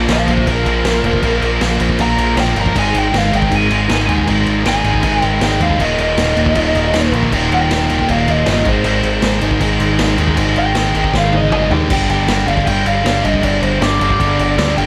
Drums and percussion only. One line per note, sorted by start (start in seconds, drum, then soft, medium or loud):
0.09 snare loud
0.09 crash medium
0.28 crash medium
0.38 kick medium
0.47 kick loud
0.47 crash medium
0.66 crash medium
0.85 snare loud
0.85 crash medium
1.04 crash medium
1.13 kick medium
1.23 kick loud
1.23 crash medium
1.42 crash medium
1.61 snare loud
1.61 crash medium
1.80 crash medium
1.90 kick medium
1.99 kick loud
1.99 crash medium
2.18 crash medium
2.37 snare loud
2.37 crash medium
2.56 crash medium
2.66 kick medium
2.76 kick loud
2.76 crash loud
2.95 crash medium
3.14 snare loud
3.14 crash medium
3.33 crash medium
3.42 kick loud
3.52 kick loud
3.52 crash medium
3.71 crash medium
3.89 snare loud
3.89 crash medium
4.09 crash medium
4.18 kick medium
4.28 kick loud
4.28 crash medium
4.46 crash medium
4.66 snare loud
4.66 crash medium
4.84 crash medium
4.94 kick medium
5.03 kick loud
5.03 crash medium
5.22 crash medium
5.41 snare loud
5.41 crash medium
5.61 crash medium
5.70 kick medium
5.80 kick loud
5.80 crash loud
5.98 crash medium
6.18 snare loud
6.18 crash loud
6.37 crash medium
6.46 kick medium
6.55 kick loud
6.55 crash medium
6.75 crash medium
6.94 snare loud
6.94 crash loud
7.13 crash medium
7.23 kick medium
7.32 kick loud
7.32 crash loud
7.52 crash medium
7.71 snare loud
7.71 crash medium
7.90 crash medium
7.99 kick medium
8.09 kick loud
8.09 crash medium
8.28 crash medium
8.46 snare loud
8.46 crash medium
8.65 kick loud
8.65 crash medium
8.84 crash loud
9.03 crash medium
9.22 snare loud
9.22 crash medium
9.41 crash medium
9.51 kick medium
9.61 kick medium
9.61 crash medium
9.80 crash medium
9.99 snare loud
9.99 crash loud
10.18 crash medium
10.28 kick medium
10.37 kick loud
10.37 crash loud
10.56 crash medium
10.75 snare loud
10.75 crash medium
10.95 crash medium
11.04 kick medium
11.14 kick medium
11.14 snare medium
11.33 high tom medium
11.52 mid tom loud
11.71 floor tom loud
11.90 kick loud
11.90 crash loud
12.10 crash medium
12.28 snare loud
12.28 crash loud
12.48 crash medium
12.57 kick medium
12.67 kick loud
12.67 crash loud
12.86 crash medium
13.06 snare loud
13.06 crash medium
13.25 crash medium
13.34 kick medium
13.43 kick loud
13.43 crash loud
13.63 crash medium
13.82 snare loud
13.82 crash medium
14.01 crash medium
14.10 kick medium
14.20 kick loud
14.20 crash medium
14.39 crash medium
14.58 snare loud
14.58 crash medium
14.78 crash medium